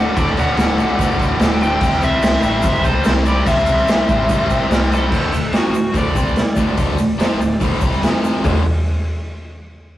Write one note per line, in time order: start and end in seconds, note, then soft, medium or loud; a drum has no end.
0.00 0.11 D1 medium
0.00 0.14 D2 medium
0.00 0.15 A2 medium
0.00 0.16 D3 medium
0.00 1.78 D4 medium
0.00 1.78 F#4 medium
0.00 1.78 A4 medium
0.00 0.14 D5 medium
0.00 0.18 F#5 loud
0.15 0.35 D1 medium
0.15 0.34 D2 medium
0.15 0.34 A2 loud
0.15 0.36 D3 loud
0.15 0.36 A4 medium
0.15 0.36 D5 loud
0.15 kick loud
0.15 crash medium
0.15 shaker medium
0.35 0.55 D1 medium
0.35 0.54 D2 medium
0.35 0.55 A2 medium
0.35 0.56 D3 loud
0.35 crash medium
0.35 shaker medium
0.40 1.58 D5 medium
0.40 1.58 F#5 medium
0.55 0.76 D1 medium
0.55 0.75 D2 medium
0.55 0.75 A2 loud
0.55 0.76 D3 medium
0.55 snare loud
0.55 crash medium
0.55 shaker medium
0.76 0.97 C2 loud
0.76 0.94 D2 medium
0.76 0.95 A2 loud
0.76 0.95 D3 loud
0.76 crash medium
0.76 shaker medium
0.95 1.17 A1 medium
0.95 1.15 D2 medium
0.95 1.16 A2 loud
0.95 1.17 D3 loud
0.95 kick loud
0.95 crash medium
1.01 shaker loud
1.16 1.38 D1 medium
1.16 1.37 D2 medium
1.16 1.37 A2 loud
1.16 1.38 D3 loud
1.16 kick medium
1.16 crash medium
1.22 shaker medium
1.38 1.76 D1 loud
1.38 1.57 D2 loud
1.38 1.57 A2 loud
1.38 1.58 D3 loud
1.38 snare loud
1.38 crash medium
1.38 shaker loud
1.58 1.78 D2 medium
1.58 1.79 A2 medium
1.58 1.79 D3 medium
1.58 crash medium
1.62 1.81 D2 medium
1.62 1.82 A2 loud
1.62 1.82 D3 loud
1.62 2.00 E5 medium
1.62 2.04 G5 medium
1.62 shaker medium
1.79 2.00 C2 medium
1.79 1.98 C3 loud
1.79 1.99 G3 loud
1.79 2.00 C4 loud
1.79 5.08 E4 medium
1.79 5.09 G4 medium
1.79 5.09 C5 medium
1.79 kick loud
1.79 crash medium
1.79 shaker medium
1.84 2.03 C3 loud
1.84 2.03 G3 loud
1.84 2.04 C4 loud
1.93 shaker soft
1.99 2.20 C2 medium
1.99 2.20 C3 medium
1.99 2.21 G3 medium
1.99 2.21 C4 loud
1.99 crash medium
1.99 shaker medium
2.03 2.23 C3 medium
2.03 2.24 G3 medium
2.03 2.24 C4 medium
2.03 2.41 C5 medium
2.03 2.42 E5 medium
2.20 2.40 C2 medium
2.20 2.41 C3 medium
2.20 2.41 G3 loud
2.20 2.42 C4 loud
2.20 snare loud
2.20 crash medium
2.20 shaker loud
2.41 2.61 A1 loud
2.41 2.60 C3 medium
2.41 2.61 G3 loud
2.41 2.62 C4 loud
2.41 2.86 E5 loud
2.41 crash medium
2.41 shaker medium
2.46 2.83 C5 medium
2.62 2.82 G1 medium
2.62 2.82 C3 loud
2.62 2.82 G3 loud
2.62 2.83 C4 loud
2.62 kick loud
2.62 crash medium
2.62 shaker loud
2.83 3.03 C2 medium
2.83 3.03 C3 medium
2.83 3.03 G3 medium
2.83 3.04 C4 loud
2.83 3.05 C5 medium
2.83 kick medium
2.83 crash medium
2.83 shaker medium
2.88 3.08 C4 loud
2.88 3.06 A4 medium
3.04 3.41 C2 loud
3.04 3.23 C3 medium
3.04 3.24 G3 loud
3.04 3.25 C4 loud
3.04 3.11 C5 medium
3.04 snare loud
3.04 crash medium
3.04 shaker loud
3.09 3.28 C4 loud
3.09 3.14 G4 medium
3.25 3.44 C3 medium
3.25 3.44 G3 loud
3.25 3.45 C4 medium
3.25 3.47 B4 medium
3.25 3.48 D5 medium
3.25 crash medium
3.25 shaker medium
3.45 3.65 C2 loud
3.45 3.64 C3 loud
3.45 3.64 G3 loud
3.45 3.65 C4 medium
3.45 4.67 E5 loud
3.45 kick loud
3.45 crash medium
3.45 shaker loud
3.50 4.68 C5 medium
3.58 shaker soft
3.65 3.85 C2 loud
3.65 3.86 C3 medium
3.65 3.86 G3 medium
3.65 3.86 C4 medium
3.65 crash medium
3.65 shaker medium
3.70 3.88 G3 medium
3.78 shaker soft
3.87 4.06 C2 medium
3.87 4.06 C3 medium
3.87 4.06 G3 medium
3.87 4.07 C4 loud
3.87 snare loud
3.87 crash medium
3.87 shaker loud
4.07 4.27 A1 medium
4.07 4.27 C3 loud
4.07 4.28 G3 medium
4.07 4.28 C4 loud
4.07 kick medium
4.07 crash medium
4.07 shaker medium
4.28 4.48 G1 loud
4.28 4.48 C3 loud
4.28 4.49 G3 loud
4.28 4.49 C4 loud
4.28 kick loud
4.28 crash medium
4.28 shaker loud
4.49 4.68 C2 medium
4.49 4.68 C3 medium
4.49 4.69 G3 medium
4.49 4.69 C4 loud
4.49 kick medium
4.49 crash medium
4.49 shaker medium
4.62 shaker soft
4.69 5.07 C2 medium
4.69 4.89 C3 loud
4.69 4.89 G3 loud
4.69 4.89 C4 loud
4.69 snare loud
4.69 crash medium
4.69 shaker medium
4.83 shaker soft
4.90 5.10 C3 medium
4.90 5.10 G3 medium
4.90 5.11 C4 loud
4.90 crash medium
4.90 shaker medium
4.95 5.51 A4 medium
5.10 5.31 D1 medium
5.10 5.30 D2 medium
5.10 5.30 A2 medium
5.10 5.33 D3 medium
5.10 kick loud
5.10 crash loud
5.10 shaker medium
5.31 5.51 D1 medium
5.31 5.49 D2 medium
5.31 5.49 A2 medium
5.31 open hi-hat medium
5.31 shaker medium
5.51 5.72 F1 medium
5.51 5.72 F2 medium
5.51 5.73 C3 medium
5.51 5.74 F3 medium
5.51 snare loud
5.51 open hi-hat medium
5.51 shaker medium
5.55 5.97 F#4 medium
5.72 5.93 D1 medium
5.72 5.90 D2 medium
5.72 5.91 A2 medium
5.72 open hi-hat medium
5.72 shaker loud
5.92 6.14 D1 medium
5.92 6.13 D2 medium
5.92 6.14 A2 medium
5.92 6.14 D3 loud
5.92 kick loud
5.92 open hi-hat medium
5.92 shaker medium
5.98 8.00 D5 loud
6.13 6.34 C2 medium
6.13 6.34 C3 medium
6.13 6.36 G3 medium
6.13 6.36 C4 medium
6.13 kick loud
6.13 open hi-hat medium
6.13 shaker loud
6.28 shaker soft
6.35 muted overdriven electric guitar stroke medium
6.35 muted upright bass stroke soft
6.35 muted distorted electric guitar stroke medium
6.35 snare loud
6.35 open hi-hat medium
6.35 shaker medium
6.56 6.76 D1 medium
6.56 6.75 D2 medium
6.56 6.76 A2 medium
6.56 6.76 D3 medium
6.56 kick medium
6.56 open hi-hat medium
6.56 shaker loud
6.76 6.97 D1 medium
6.76 6.96 D2 medium
6.76 6.96 A2 medium
6.76 6.98 D3 loud
6.76 kick loud
6.76 open hi-hat medium
6.76 shaker medium
6.97 7.18 D1 medium
6.97 7.15 D2 medium
6.97 7.15 A2 medium
6.97 open hi-hat medium
6.97 shaker medium
7.18 7.38 F1 medium
7.18 7.39 F2 medium
7.18 7.39 C3 medium
7.18 7.40 F3 loud
7.18 snare loud
7.18 open hi-hat medium
7.18 shaker medium
7.38 7.59 D1 medium
7.38 7.57 D2 medium
7.38 7.57 A2 medium
7.38 open hi-hat medium
7.38 shaker loud
7.60 7.80 D1 medium
7.60 7.81 D2 medium
7.60 7.82 A2 loud
7.60 7.82 D3 loud
7.60 kick loud
7.60 open hi-hat medium
7.60 shaker medium
7.81 8.01 C2 loud
7.81 8.01 C3 medium
7.81 8.02 G3 medium
7.81 8.03 C4 medium
7.81 kick loud
7.81 open hi-hat medium
7.81 shaker medium
7.92 snare soft
7.92 shaker soft
8.02 8.41 F1 medium
8.02 8.43 F2 medium
8.02 8.44 C3 loud
8.02 8.44 F3 medium
8.02 snare loud
8.02 open hi-hat medium
8.02 shaker medium
8.24 open hi-hat medium
8.24 shaker medium
8.44 8.64 D1 medium
8.44 8.61 D2 medium
8.44 8.61 A2 loud
8.44 8.62 D3 loud
8.44 kick loud
8.44 floor tom loud
8.44 open hi-hat medium
8.44 shaker medium